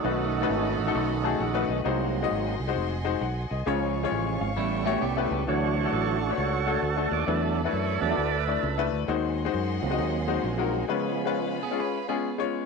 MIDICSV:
0, 0, Header, 1, 6, 480
1, 0, Start_track
1, 0, Tempo, 452148
1, 48, Time_signature, 4, 2, 24, 8
1, 13437, End_track
2, 0, Start_track
2, 0, Title_t, "String section"
2, 0, Program_c, 0, 48
2, 0, Note_on_c, 0, 78, 65
2, 54, Note_on_c, 0, 83, 82
2, 62, Note_on_c, 0, 75, 77
2, 1949, Note_off_c, 0, 75, 0
2, 1951, Note_off_c, 0, 83, 0
2, 1957, Note_on_c, 0, 84, 80
2, 1962, Note_on_c, 0, 75, 75
2, 1962, Note_on_c, 0, 80, 66
2, 3835, Note_off_c, 0, 78, 0
2, 3862, Note_off_c, 0, 84, 0
2, 3864, Note_off_c, 0, 75, 0
2, 3889, Note_on_c, 0, 73, 73
2, 3889, Note_on_c, 0, 77, 65
2, 3889, Note_on_c, 0, 85, 81
2, 4814, Note_off_c, 0, 80, 0
2, 4837, Note_off_c, 0, 73, 0
2, 4837, Note_off_c, 0, 77, 0
2, 4858, Note_on_c, 0, 79, 66
2, 4859, Note_on_c, 0, 76, 73
2, 4860, Note_on_c, 0, 81, 68
2, 5780, Note_off_c, 0, 85, 0
2, 5793, Note_on_c, 0, 85, 82
2, 5795, Note_on_c, 0, 78, 69
2, 5796, Note_on_c, 0, 62, 74
2, 5801, Note_off_c, 0, 79, 0
2, 5802, Note_off_c, 0, 76, 0
2, 7699, Note_off_c, 0, 85, 0
2, 7700, Note_off_c, 0, 78, 0
2, 7733, Note_on_c, 0, 76, 66
2, 7737, Note_on_c, 0, 83, 83
2, 9602, Note_off_c, 0, 62, 0
2, 9609, Note_off_c, 0, 81, 0
2, 9628, Note_on_c, 0, 80, 68
2, 9630, Note_off_c, 0, 76, 0
2, 9630, Note_on_c, 0, 75, 77
2, 9632, Note_off_c, 0, 83, 0
2, 9635, Note_on_c, 0, 84, 84
2, 9636, Note_on_c, 0, 78, 73
2, 11538, Note_off_c, 0, 75, 0
2, 11541, Note_off_c, 0, 84, 0
2, 11542, Note_off_c, 0, 78, 0
2, 11559, Note_on_c, 0, 73, 76
2, 11561, Note_on_c, 0, 83, 85
2, 11562, Note_on_c, 0, 77, 71
2, 13437, Note_off_c, 0, 73, 0
2, 13437, Note_off_c, 0, 77, 0
2, 13437, Note_off_c, 0, 80, 0
2, 13437, Note_off_c, 0, 83, 0
2, 13437, End_track
3, 0, Start_track
3, 0, Title_t, "Clean electric guitar"
3, 0, Program_c, 1, 27
3, 4854, Note_on_c, 1, 55, 62
3, 4858, Note_on_c, 1, 64, 62
3, 5142, Note_off_c, 1, 64, 0
3, 5144, Note_off_c, 1, 55, 0
3, 5156, Note_on_c, 1, 66, 81
3, 5163, Note_on_c, 1, 57, 62
3, 5317, Note_off_c, 1, 66, 0
3, 5320, Note_on_c, 1, 67, 72
3, 5321, Note_off_c, 1, 57, 0
3, 5329, Note_on_c, 1, 59, 59
3, 5778, Note_off_c, 1, 67, 0
3, 5783, Note_off_c, 1, 59, 0
3, 12345, Note_on_c, 1, 68, 74
3, 12355, Note_on_c, 1, 59, 60
3, 12511, Note_off_c, 1, 68, 0
3, 12517, Note_off_c, 1, 59, 0
3, 12529, Note_on_c, 1, 71, 74
3, 12819, Note_off_c, 1, 71, 0
3, 12835, Note_on_c, 1, 68, 70
3, 12840, Note_on_c, 1, 59, 62
3, 13437, Note_off_c, 1, 59, 0
3, 13437, Note_off_c, 1, 68, 0
3, 13437, End_track
4, 0, Start_track
4, 0, Title_t, "Grand piano"
4, 0, Program_c, 2, 0
4, 42, Note_on_c, 2, 57, 68
4, 46, Note_on_c, 2, 63, 64
4, 49, Note_on_c, 2, 47, 59
4, 52, Note_on_c, 2, 66, 62
4, 58, Note_on_c, 2, 71, 74
4, 360, Note_off_c, 2, 57, 0
4, 362, Note_off_c, 2, 63, 0
4, 365, Note_off_c, 2, 66, 0
4, 368, Note_off_c, 2, 71, 0
4, 444, Note_on_c, 2, 57, 84
4, 448, Note_on_c, 2, 63, 77
4, 455, Note_on_c, 2, 66, 77
4, 458, Note_on_c, 2, 71, 91
4, 794, Note_off_c, 2, 47, 0
4, 802, Note_off_c, 2, 57, 0
4, 803, Note_off_c, 2, 63, 0
4, 807, Note_off_c, 2, 66, 0
4, 809, Note_off_c, 2, 71, 0
4, 919, Note_on_c, 2, 57, 76
4, 924, Note_on_c, 2, 63, 69
4, 928, Note_on_c, 2, 66, 70
4, 933, Note_on_c, 2, 69, 89
4, 1172, Note_off_c, 2, 57, 0
4, 1175, Note_off_c, 2, 63, 0
4, 1177, Note_off_c, 2, 66, 0
4, 1179, Note_off_c, 2, 69, 0
4, 1315, Note_on_c, 2, 57, 79
4, 1319, Note_on_c, 2, 63, 75
4, 1323, Note_on_c, 2, 81, 66
4, 1326, Note_on_c, 2, 66, 76
4, 1328, Note_on_c, 2, 68, 93
4, 1479, Note_off_c, 2, 81, 0
4, 1492, Note_on_c, 2, 78, 67
4, 1498, Note_off_c, 2, 57, 0
4, 1501, Note_off_c, 2, 63, 0
4, 1504, Note_off_c, 2, 66, 0
4, 1505, Note_off_c, 2, 68, 0
4, 1633, Note_on_c, 2, 57, 82
4, 1635, Note_on_c, 2, 63, 75
4, 1643, Note_on_c, 2, 66, 72
4, 1643, Note_on_c, 2, 71, 92
4, 1777, Note_off_c, 2, 78, 0
4, 1793, Note_on_c, 2, 75, 68
4, 1884, Note_off_c, 2, 57, 0
4, 1885, Note_off_c, 2, 63, 0
4, 1889, Note_off_c, 2, 66, 0
4, 1889, Note_off_c, 2, 71, 0
4, 1954, Note_off_c, 2, 75, 0
4, 1959, Note_on_c, 2, 56, 83
4, 1962, Note_on_c, 2, 63, 72
4, 1966, Note_on_c, 2, 48, 73
4, 1967, Note_on_c, 2, 66, 72
4, 1972, Note_on_c, 2, 72, 92
4, 2278, Note_off_c, 2, 56, 0
4, 2280, Note_off_c, 2, 63, 0
4, 2282, Note_off_c, 2, 66, 0
4, 2285, Note_off_c, 2, 72, 0
4, 2361, Note_on_c, 2, 56, 85
4, 2362, Note_on_c, 2, 63, 77
4, 2371, Note_on_c, 2, 66, 75
4, 2375, Note_on_c, 2, 75, 98
4, 2712, Note_off_c, 2, 48, 0
4, 2719, Note_off_c, 2, 56, 0
4, 2720, Note_off_c, 2, 63, 0
4, 2724, Note_off_c, 2, 66, 0
4, 2726, Note_off_c, 2, 75, 0
4, 2840, Note_on_c, 2, 56, 79
4, 2845, Note_on_c, 2, 63, 71
4, 2848, Note_on_c, 2, 66, 73
4, 2853, Note_on_c, 2, 72, 92
4, 3092, Note_off_c, 2, 56, 0
4, 3094, Note_off_c, 2, 63, 0
4, 3096, Note_off_c, 2, 66, 0
4, 3099, Note_off_c, 2, 72, 0
4, 3231, Note_on_c, 2, 56, 78
4, 3233, Note_on_c, 2, 63, 79
4, 3238, Note_on_c, 2, 66, 75
4, 3240, Note_on_c, 2, 72, 93
4, 3411, Note_on_c, 2, 78, 62
4, 3416, Note_off_c, 2, 56, 0
4, 3417, Note_off_c, 2, 63, 0
4, 3419, Note_off_c, 2, 66, 0
4, 3421, Note_off_c, 2, 72, 0
4, 3702, Note_off_c, 2, 78, 0
4, 3721, Note_on_c, 2, 75, 63
4, 3886, Note_on_c, 2, 56, 81
4, 3889, Note_on_c, 2, 61, 72
4, 3892, Note_on_c, 2, 49, 70
4, 3895, Note_on_c, 2, 65, 73
4, 3901, Note_on_c, 2, 73, 90
4, 4173, Note_off_c, 2, 75, 0
4, 4201, Note_off_c, 2, 56, 0
4, 4202, Note_off_c, 2, 61, 0
4, 4205, Note_off_c, 2, 65, 0
4, 4208, Note_off_c, 2, 73, 0
4, 4281, Note_on_c, 2, 56, 84
4, 4286, Note_on_c, 2, 61, 75
4, 4290, Note_on_c, 2, 65, 76
4, 4297, Note_on_c, 2, 73, 94
4, 4366, Note_on_c, 2, 80, 62
4, 4634, Note_off_c, 2, 49, 0
4, 4639, Note_off_c, 2, 56, 0
4, 4641, Note_off_c, 2, 61, 0
4, 4643, Note_off_c, 2, 65, 0
4, 4647, Note_off_c, 2, 73, 0
4, 4659, Note_off_c, 2, 80, 0
4, 4680, Note_on_c, 2, 77, 59
4, 4845, Note_on_c, 2, 45, 73
4, 5133, Note_off_c, 2, 77, 0
4, 5154, Note_on_c, 2, 57, 82
4, 5159, Note_on_c, 2, 64, 72
4, 5168, Note_on_c, 2, 67, 73
4, 5170, Note_on_c, 2, 73, 92
4, 5337, Note_off_c, 2, 57, 0
4, 5339, Note_off_c, 2, 64, 0
4, 5344, Note_off_c, 2, 67, 0
4, 5345, Note_off_c, 2, 73, 0
4, 5484, Note_on_c, 2, 57, 80
4, 5487, Note_on_c, 2, 64, 77
4, 5496, Note_on_c, 2, 67, 73
4, 5499, Note_on_c, 2, 71, 85
4, 5590, Note_off_c, 2, 45, 0
4, 5728, Note_off_c, 2, 57, 0
4, 5729, Note_off_c, 2, 64, 0
4, 5734, Note_off_c, 2, 67, 0
4, 5735, Note_off_c, 2, 71, 0
4, 5810, Note_on_c, 2, 57, 67
4, 5813, Note_on_c, 2, 62, 61
4, 5817, Note_on_c, 2, 50, 61
4, 5820, Note_on_c, 2, 66, 61
4, 5825, Note_on_c, 2, 73, 73
4, 6122, Note_off_c, 2, 57, 0
4, 6124, Note_off_c, 2, 62, 0
4, 6127, Note_off_c, 2, 66, 0
4, 6130, Note_off_c, 2, 73, 0
4, 6198, Note_on_c, 2, 57, 65
4, 6206, Note_on_c, 2, 62, 59
4, 6210, Note_on_c, 2, 66, 62
4, 6215, Note_on_c, 2, 69, 75
4, 6556, Note_off_c, 2, 57, 0
4, 6557, Note_off_c, 2, 50, 0
4, 6561, Note_off_c, 2, 62, 0
4, 6563, Note_off_c, 2, 66, 0
4, 6565, Note_off_c, 2, 69, 0
4, 6680, Note_on_c, 2, 57, 67
4, 6683, Note_on_c, 2, 62, 62
4, 6689, Note_on_c, 2, 66, 58
4, 6694, Note_on_c, 2, 73, 71
4, 6931, Note_off_c, 2, 57, 0
4, 6932, Note_off_c, 2, 62, 0
4, 6935, Note_off_c, 2, 66, 0
4, 6938, Note_off_c, 2, 73, 0
4, 7076, Note_on_c, 2, 57, 68
4, 7077, Note_on_c, 2, 62, 61
4, 7085, Note_on_c, 2, 66, 65
4, 7087, Note_on_c, 2, 69, 76
4, 7257, Note_off_c, 2, 57, 0
4, 7258, Note_off_c, 2, 62, 0
4, 7262, Note_off_c, 2, 66, 0
4, 7263, Note_off_c, 2, 69, 0
4, 7393, Note_on_c, 2, 57, 70
4, 7398, Note_on_c, 2, 62, 63
4, 7406, Note_on_c, 2, 66, 64
4, 7409, Note_on_c, 2, 69, 76
4, 7642, Note_off_c, 2, 57, 0
4, 7645, Note_off_c, 2, 62, 0
4, 7649, Note_off_c, 2, 66, 0
4, 7650, Note_off_c, 2, 69, 0
4, 7714, Note_on_c, 2, 57, 68
4, 7719, Note_on_c, 2, 62, 62
4, 7722, Note_on_c, 2, 52, 58
4, 7723, Note_on_c, 2, 64, 61
4, 7731, Note_on_c, 2, 71, 74
4, 8034, Note_off_c, 2, 57, 0
4, 8037, Note_off_c, 2, 62, 0
4, 8039, Note_off_c, 2, 64, 0
4, 8042, Note_off_c, 2, 71, 0
4, 8112, Note_on_c, 2, 57, 70
4, 8115, Note_on_c, 2, 62, 62
4, 8123, Note_on_c, 2, 64, 65
4, 8125, Note_on_c, 2, 71, 76
4, 8469, Note_off_c, 2, 52, 0
4, 8474, Note_off_c, 2, 57, 0
4, 8475, Note_off_c, 2, 62, 0
4, 8479, Note_off_c, 2, 64, 0
4, 8480, Note_off_c, 2, 71, 0
4, 8598, Note_on_c, 2, 57, 65
4, 8602, Note_on_c, 2, 62, 60
4, 8606, Note_on_c, 2, 64, 59
4, 8610, Note_on_c, 2, 66, 70
4, 8850, Note_off_c, 2, 57, 0
4, 8852, Note_off_c, 2, 62, 0
4, 8854, Note_off_c, 2, 64, 0
4, 8856, Note_off_c, 2, 66, 0
4, 8996, Note_on_c, 2, 57, 68
4, 8997, Note_on_c, 2, 62, 60
4, 9004, Note_on_c, 2, 64, 63
4, 9010, Note_on_c, 2, 74, 77
4, 9178, Note_off_c, 2, 57, 0
4, 9178, Note_off_c, 2, 62, 0
4, 9181, Note_off_c, 2, 64, 0
4, 9185, Note_off_c, 2, 74, 0
4, 9319, Note_on_c, 2, 57, 81
4, 9323, Note_on_c, 2, 62, 75
4, 9326, Note_on_c, 2, 64, 79
4, 9331, Note_on_c, 2, 71, 96
4, 9565, Note_off_c, 2, 57, 0
4, 9567, Note_off_c, 2, 62, 0
4, 9569, Note_off_c, 2, 64, 0
4, 9571, Note_off_c, 2, 71, 0
4, 9638, Note_on_c, 2, 56, 81
4, 9644, Note_on_c, 2, 63, 77
4, 9648, Note_on_c, 2, 51, 68
4, 9649, Note_on_c, 2, 66, 78
4, 9653, Note_on_c, 2, 72, 94
4, 9956, Note_off_c, 2, 56, 0
4, 9959, Note_off_c, 2, 63, 0
4, 9962, Note_off_c, 2, 66, 0
4, 9964, Note_off_c, 2, 72, 0
4, 10030, Note_on_c, 2, 56, 89
4, 10034, Note_on_c, 2, 63, 76
4, 10042, Note_on_c, 2, 66, 76
4, 10045, Note_on_c, 2, 72, 92
4, 10393, Note_off_c, 2, 51, 0
4, 10393, Note_off_c, 2, 56, 0
4, 10395, Note_off_c, 2, 63, 0
4, 10399, Note_off_c, 2, 66, 0
4, 10400, Note_off_c, 2, 72, 0
4, 10510, Note_on_c, 2, 56, 81
4, 10517, Note_on_c, 2, 63, 75
4, 10520, Note_on_c, 2, 66, 76
4, 10525, Note_on_c, 2, 75, 89
4, 10766, Note_off_c, 2, 56, 0
4, 10770, Note_off_c, 2, 63, 0
4, 10771, Note_off_c, 2, 66, 0
4, 10774, Note_off_c, 2, 75, 0
4, 10908, Note_on_c, 2, 56, 85
4, 10910, Note_on_c, 2, 63, 78
4, 10916, Note_on_c, 2, 66, 77
4, 10922, Note_on_c, 2, 72, 88
4, 11094, Note_off_c, 2, 56, 0
4, 11095, Note_off_c, 2, 63, 0
4, 11098, Note_off_c, 2, 66, 0
4, 11101, Note_off_c, 2, 72, 0
4, 11228, Note_on_c, 2, 56, 79
4, 11234, Note_on_c, 2, 63, 72
4, 11239, Note_on_c, 2, 66, 77
4, 11243, Note_on_c, 2, 70, 86
4, 11480, Note_off_c, 2, 56, 0
4, 11483, Note_off_c, 2, 63, 0
4, 11486, Note_off_c, 2, 66, 0
4, 11488, Note_off_c, 2, 70, 0
4, 11552, Note_on_c, 2, 56, 82
4, 11557, Note_on_c, 2, 61, 75
4, 11560, Note_on_c, 2, 65, 71
4, 11563, Note_on_c, 2, 49, 69
4, 11566, Note_on_c, 2, 71, 94
4, 11873, Note_off_c, 2, 56, 0
4, 11876, Note_off_c, 2, 61, 0
4, 11878, Note_off_c, 2, 65, 0
4, 11880, Note_off_c, 2, 71, 0
4, 11946, Note_on_c, 2, 56, 80
4, 11952, Note_on_c, 2, 61, 72
4, 11959, Note_on_c, 2, 65, 77
4, 11963, Note_on_c, 2, 71, 95
4, 12310, Note_off_c, 2, 49, 0
4, 12311, Note_off_c, 2, 56, 0
4, 12314, Note_off_c, 2, 61, 0
4, 12317, Note_off_c, 2, 65, 0
4, 12319, Note_off_c, 2, 71, 0
4, 12430, Note_on_c, 2, 56, 76
4, 12437, Note_on_c, 2, 61, 73
4, 12440, Note_on_c, 2, 65, 70
4, 12447, Note_on_c, 2, 68, 83
4, 12686, Note_off_c, 2, 56, 0
4, 12689, Note_off_c, 2, 61, 0
4, 12691, Note_off_c, 2, 65, 0
4, 12694, Note_off_c, 2, 68, 0
4, 12830, Note_on_c, 2, 56, 75
4, 12832, Note_on_c, 2, 61, 78
4, 12842, Note_on_c, 2, 65, 71
4, 12843, Note_on_c, 2, 68, 87
4, 13014, Note_off_c, 2, 56, 0
4, 13016, Note_off_c, 2, 61, 0
4, 13020, Note_off_c, 2, 65, 0
4, 13021, Note_off_c, 2, 68, 0
4, 13145, Note_on_c, 2, 56, 82
4, 13150, Note_on_c, 2, 61, 71
4, 13157, Note_on_c, 2, 65, 69
4, 13161, Note_on_c, 2, 73, 90
4, 13397, Note_off_c, 2, 56, 0
4, 13400, Note_off_c, 2, 61, 0
4, 13404, Note_off_c, 2, 65, 0
4, 13406, Note_off_c, 2, 73, 0
4, 13437, End_track
5, 0, Start_track
5, 0, Title_t, "Tonewheel organ"
5, 0, Program_c, 3, 16
5, 0, Note_on_c, 3, 63, 72
5, 0, Note_on_c, 3, 66, 74
5, 0, Note_on_c, 3, 69, 114
5, 31, Note_on_c, 3, 51, 57
5, 41, Note_on_c, 3, 61, 57
5, 45, Note_on_c, 3, 57, 51
5, 1749, Note_off_c, 3, 63, 0
5, 1749, Note_off_c, 3, 66, 0
5, 1751, Note_off_c, 3, 69, 0
5, 1916, Note_off_c, 3, 51, 0
5, 1921, Note_off_c, 3, 61, 0
5, 1923, Note_off_c, 3, 57, 0
5, 1953, Note_on_c, 3, 54, 56
5, 1964, Note_on_c, 3, 58, 49
5, 1970, Note_on_c, 3, 60, 61
5, 2709, Note_off_c, 3, 54, 0
5, 2714, Note_off_c, 3, 58, 0
5, 2717, Note_off_c, 3, 60, 0
5, 3889, Note_on_c, 3, 53, 58
5, 3897, Note_on_c, 3, 56, 51
5, 3900, Note_on_c, 3, 61, 63
5, 4804, Note_off_c, 3, 53, 0
5, 4808, Note_off_c, 3, 56, 0
5, 4810, Note_off_c, 3, 61, 0
5, 4864, Note_on_c, 3, 55, 53
5, 4868, Note_on_c, 3, 59, 48
5, 4878, Note_on_c, 3, 61, 58
5, 5771, Note_off_c, 3, 55, 0
5, 5774, Note_off_c, 3, 59, 0
5, 5778, Note_off_c, 3, 61, 0
5, 5816, Note_on_c, 3, 52, 57
5, 5822, Note_on_c, 3, 54, 48
5, 5822, Note_on_c, 3, 62, 62
5, 5824, Note_on_c, 3, 57, 60
5, 5825, Note_on_c, 3, 73, 59
5, 5826, Note_on_c, 3, 66, 82
5, 6277, Note_off_c, 3, 66, 0
5, 6290, Note_on_c, 3, 66, 62
5, 6301, Note_on_c, 3, 69, 88
5, 6559, Note_off_c, 3, 52, 0
5, 6562, Note_off_c, 3, 54, 0
5, 6564, Note_off_c, 3, 73, 0
5, 6698, Note_off_c, 3, 69, 0
5, 6707, Note_on_c, 3, 71, 83
5, 6730, Note_off_c, 3, 62, 0
5, 6731, Note_off_c, 3, 57, 0
5, 6774, Note_off_c, 3, 66, 0
5, 6780, Note_off_c, 3, 71, 0
5, 6787, Note_on_c, 3, 66, 69
5, 6788, Note_on_c, 3, 69, 69
5, 6791, Note_on_c, 3, 73, 95
5, 7225, Note_off_c, 3, 73, 0
5, 7569, Note_on_c, 3, 74, 95
5, 7693, Note_off_c, 3, 66, 0
5, 7694, Note_off_c, 3, 69, 0
5, 7722, Note_on_c, 3, 54, 57
5, 7726, Note_on_c, 3, 57, 48
5, 7733, Note_on_c, 3, 62, 70
5, 7737, Note_off_c, 3, 74, 0
5, 7740, Note_on_c, 3, 69, 91
5, 8081, Note_off_c, 3, 54, 0
5, 8083, Note_off_c, 3, 57, 0
5, 8088, Note_off_c, 3, 62, 0
5, 8099, Note_off_c, 3, 69, 0
5, 8129, Note_on_c, 3, 69, 65
5, 8140, Note_on_c, 3, 73, 93
5, 8495, Note_on_c, 3, 54, 47
5, 8497, Note_off_c, 3, 69, 0
5, 8497, Note_off_c, 3, 73, 0
5, 8505, Note_on_c, 3, 57, 41
5, 8507, Note_on_c, 3, 71, 60
5, 8509, Note_on_c, 3, 62, 55
5, 8510, Note_on_c, 3, 69, 63
5, 8523, Note_on_c, 3, 74, 97
5, 8657, Note_off_c, 3, 54, 0
5, 8663, Note_off_c, 3, 57, 0
5, 8665, Note_off_c, 3, 62, 0
5, 8964, Note_off_c, 3, 74, 0
5, 9427, Note_off_c, 3, 71, 0
5, 9429, Note_off_c, 3, 69, 0
5, 10429, Note_on_c, 3, 54, 54
5, 10434, Note_on_c, 3, 58, 48
5, 10441, Note_on_c, 3, 60, 61
5, 11520, Note_off_c, 3, 54, 0
5, 11522, Note_off_c, 3, 58, 0
5, 11526, Note_off_c, 3, 60, 0
5, 11564, Note_on_c, 3, 53, 58
5, 11570, Note_on_c, 3, 56, 50
5, 11578, Note_on_c, 3, 59, 61
5, 12313, Note_off_c, 3, 53, 0
5, 12317, Note_off_c, 3, 56, 0
5, 12320, Note_off_c, 3, 59, 0
5, 13437, End_track
6, 0, Start_track
6, 0, Title_t, "Fingered electric bass"
6, 0, Program_c, 4, 33
6, 47, Note_on_c, 4, 35, 97
6, 456, Note_off_c, 4, 35, 0
6, 527, Note_on_c, 4, 32, 80
6, 790, Note_off_c, 4, 32, 0
6, 837, Note_on_c, 4, 33, 82
6, 982, Note_off_c, 4, 33, 0
6, 1007, Note_on_c, 4, 35, 93
6, 1415, Note_off_c, 4, 35, 0
6, 1486, Note_on_c, 4, 34, 85
6, 1749, Note_off_c, 4, 34, 0
6, 1789, Note_on_c, 4, 35, 83
6, 1938, Note_off_c, 4, 35, 0
6, 1968, Note_on_c, 4, 36, 99
6, 2375, Note_off_c, 4, 36, 0
6, 2451, Note_on_c, 4, 32, 78
6, 2712, Note_off_c, 4, 32, 0
6, 2758, Note_on_c, 4, 36, 78
6, 2902, Note_off_c, 4, 36, 0
6, 2928, Note_on_c, 4, 29, 93
6, 3335, Note_off_c, 4, 29, 0
6, 3409, Note_on_c, 4, 35, 77
6, 3670, Note_off_c, 4, 35, 0
6, 3727, Note_on_c, 4, 36, 80
6, 3868, Note_off_c, 4, 36, 0
6, 3892, Note_on_c, 4, 37, 97
6, 4297, Note_off_c, 4, 37, 0
6, 4372, Note_on_c, 4, 33, 78
6, 4631, Note_off_c, 4, 33, 0
6, 4680, Note_on_c, 4, 32, 79
6, 4823, Note_off_c, 4, 32, 0
6, 4845, Note_on_c, 4, 33, 99
6, 5253, Note_off_c, 4, 33, 0
6, 5332, Note_on_c, 4, 36, 76
6, 5591, Note_off_c, 4, 36, 0
6, 5635, Note_on_c, 4, 37, 82
6, 5780, Note_off_c, 4, 37, 0
6, 5808, Note_on_c, 4, 38, 87
6, 6214, Note_off_c, 4, 38, 0
6, 6291, Note_on_c, 4, 33, 87
6, 6696, Note_off_c, 4, 33, 0
6, 6770, Note_on_c, 4, 37, 85
6, 7176, Note_off_c, 4, 37, 0
6, 7244, Note_on_c, 4, 38, 88
6, 7506, Note_off_c, 4, 38, 0
6, 7550, Note_on_c, 4, 39, 82
6, 7697, Note_off_c, 4, 39, 0
6, 7725, Note_on_c, 4, 40, 93
6, 8132, Note_off_c, 4, 40, 0
6, 8204, Note_on_c, 4, 42, 80
6, 8466, Note_off_c, 4, 42, 0
6, 8513, Note_on_c, 4, 40, 82
6, 8659, Note_off_c, 4, 40, 0
6, 8680, Note_on_c, 4, 38, 90
6, 9090, Note_off_c, 4, 38, 0
6, 9162, Note_on_c, 4, 37, 92
6, 9425, Note_off_c, 4, 37, 0
6, 9471, Note_on_c, 4, 38, 86
6, 9618, Note_off_c, 4, 38, 0
6, 9642, Note_on_c, 4, 39, 98
6, 10051, Note_off_c, 4, 39, 0
6, 10125, Note_on_c, 4, 42, 88
6, 10387, Note_off_c, 4, 42, 0
6, 10431, Note_on_c, 4, 37, 78
6, 10578, Note_off_c, 4, 37, 0
6, 10601, Note_on_c, 4, 39, 95
6, 11011, Note_off_c, 4, 39, 0
6, 11082, Note_on_c, 4, 34, 85
6, 11491, Note_off_c, 4, 34, 0
6, 13437, End_track
0, 0, End_of_file